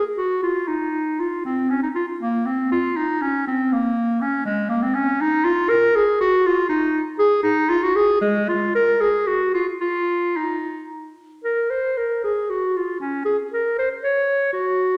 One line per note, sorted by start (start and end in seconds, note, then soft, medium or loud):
0.17 0.42 F#4 medium
0.43 0.69 F4 medium
0.68 1.21 D#4 medium
1.20 1.44 F4 medium
1.45 1.71 C4 medium
1.70 1.82 C#4 medium
1.82 1.88 D#4 medium
1.95 2.06 F4 medium
2.20 2.47 A#3 medium
2.46 2.71 C4 medium
2.72 2.98 F4 medium
2.96 3.23 D#4 medium
3.22 3.46 C#4 medium
3.47 3.74 C4 medium
3.72 4.22 A#3 medium
4.21 4.45 C#4 medium
4.45 4.71 G#3 medium
4.69 4.84 A#3 medium
4.83 4.96 C4 medium
4.95 5.23 C#4 medium
5.21 5.46 D#4 medium
5.45 5.71 F4 medium
5.69 5.97 A#4 medium
5.96 6.20 G#4 medium
6.21 6.48 F#4 loud
6.46 6.68 F4 loud
6.69 7.00 D#4 medium
7.19 7.42 G#4 medium
7.43 7.71 D#4 medium
7.69 7.84 F4 medium
7.83 7.97 F#4 medium
7.96 8.20 G#4 medium
8.21 8.50 G#3 medium
8.48 8.74 F4 medium
8.75 9.02 A#4 medium
9.01 9.28 G#4 medium
9.27 9.53 F#4 medium
9.54 9.66 F4 medium
9.80 10.38 F4 medium
10.36 10.90 D#4 medium
11.44 11.72 A#4 medium
11.70 11.99 C5 medium
11.97 12.23 A#4 medium
12.24 12.51 G#4 medium
12.50 12.78 F#4 medium
12.76 12.99 F4 medium
13.00 13.25 C#4 medium
13.25 13.37 G#4 medium
13.53 13.77 A#4 medium
13.78 13.89 C5 medium
14.03 14.52 C#5 medium
14.53 14.97 F#4 medium